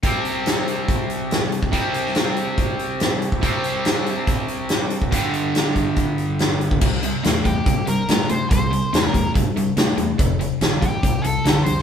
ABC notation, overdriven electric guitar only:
X:1
M:4/4
L:1/8
Q:1/4=142
K:Gdor
V:1 name="Overdriven electric guitar" clef=bass
[C,G,C]8 | [C,G,C]8 | [C,G,C]8 | [G,,D,G,]8 |
[C,G,] [C,G,] [C,A,] [C,A,] [C,G,] [C,G,] [C,A,] [C,A,] | [C,G,] [C,G,] [C,A,] [C,A,] [C,G,] [C,G,] [C,A,] [C,A,] | [F,,C,] [F,,C,] [F,,D,] [F,,D,] [F,,C,] [F,,C,] [F,,D,] [F,,D,] |]